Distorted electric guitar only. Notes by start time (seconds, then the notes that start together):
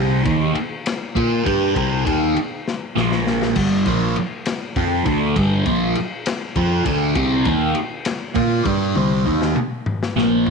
Already playing: C3 G3 C4
0.24 D#3 A#3 D#4
0.55 muted distorted electric guitar stroke
1.15 A#3 F4 A#4
1.45 G3 D4 G4
1.75 C3 G3 C4
2.05 D#3 A#3 D#4
2.36 muted distorted electric guitar stroke
2.96 A#2 F3 A#3
3.56 G2 D3 G3
3.86 A#2 F3 A#3
4.17 muted distorted electric guitar stroke
4.77 F3 C4 F4
5.06 D3 A3 D4
5.36 G2 D3 G3
5.66 A#2 F3 A#3
5.98 muted distorted electric guitar stroke
6.56 F3 C4 F4
6.85 D3 A3 D4
7.15 C3 G3 C4
7.46 D#3 A#3 D#4
7.76 muted distorted electric guitar stroke
8.35 A#3 F4 A#4
8.65 G3 D4 G4
8.95 C3 G3 C4
9.26 D#3 A#3 D#4
9.56 muted distorted electric guitar stroke
10.16 A#2 F3 A#3